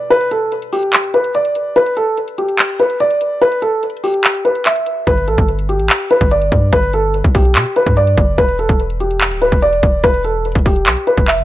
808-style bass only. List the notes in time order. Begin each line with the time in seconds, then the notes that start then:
5.07 G1
5.28 A1
5.38 G1
5.80 A1
6.21 G1
6.52 G2
6.73 G1
7.24 B1
7.55 B2
7.87 G2
8.18 F#1
8.38 E1
8.69 E1
9.31 D1
9.52 E1
9.83 E1
10.04 E1
10.55 E1
10.86 B1
11.18 E1
11.38 G1